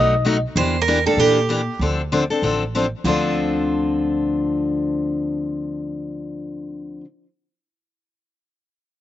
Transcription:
0.00 0.43 B1 medium
0.00 0.13 B2 medium
0.00 0.13 F#3 medium
0.00 0.13 A3 medium
0.00 0.14 D#4 medium
0.00 0.14 F#4 medium
0.00 0.41 D#5 loud
0.25 0.35 B2 medium
0.25 0.36 F#3 medium
0.25 0.36 A3 medium
0.25 0.36 D#4 medium
0.25 0.36 F#4 medium
0.56 1.06 E2 medium
0.56 0.76 E3 medium
0.56 0.76 A#3 medium
0.56 0.76 D4 medium
0.56 0.76 G4 medium
0.56 0.81 C5 loud
0.81 1.06 A#4 medium
0.88 0.98 E3 medium
0.88 0.98 A#3 medium
0.88 0.98 D4 medium
0.88 0.99 G4 medium
1.06 1.18 A#3 soft
1.06 1.19 D4 medium
1.06 1.18 G4 medium
1.06 1.19 A4 medium
1.17 1.67 A#2 medium
1.17 1.38 E3 medium
1.17 1.38 A#3 medium
1.17 1.39 D4 medium
1.17 1.81 G4 medium
1.17 1.39 G4 medium
1.49 1.60 E3 medium
1.49 1.60 A#3 medium
1.49 1.60 D4 medium
1.49 1.60 G4 medium
1.79 2.30 D2 medium
1.79 2.00 D3 medium
1.79 2.00 F3 medium
1.79 2.01 C4 medium
1.79 2.01 D4 medium
1.79 2.01 A4 medium
2.12 2.22 D3 medium
2.12 2.23 F3 medium
2.12 2.23 C4 medium
2.12 2.23 D4 medium
2.12 2.23 A4 medium
2.30 2.42 C4 soft
2.30 2.42 D4 soft
2.30 2.42 A4 medium
2.42 2.92 A1 medium
2.42 2.63 D3 medium
2.42 2.62 F3 medium
2.42 2.63 C4 medium
2.42 2.63 D4 medium
2.42 2.63 A4 medium
2.75 2.85 D3 medium
2.75 2.85 F3 medium
2.75 2.85 C4 medium
2.75 2.85 D4 medium
2.75 2.85 A4 medium
3.04 7.00 D2 medium
3.04 7.04 D3 medium
3.04 7.05 F3 medium
3.04 7.05 C4 medium
3.04 7.05 D4 medium
3.04 7.00 F4 medium
3.04 7.06 A4 medium

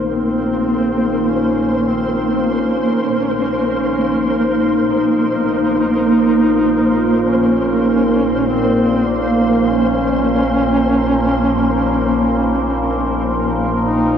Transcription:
0.00 14.18 A#1 medium
0.00 14.18 A#2 medium
0.00 14.18 A#3 medium
0.00 14.18 D#4 medium
0.00 14.18 A#4 medium
0.00 14.18 C5 medium
0.08 1.30 C4 loud
1.28 1.89 C#4 medium
1.88 2.49 C4 medium
2.48 3.65 C#4 medium
3.66 4.56 C#4 loud
4.86 7.29 D#4 loud
7.28 8.47 C#4 medium
8.48 9.08 C4 medium
9.06 9.70 A#3 medium
9.69 13.28 C#4 medium
13.85 14.18 D#4 medium

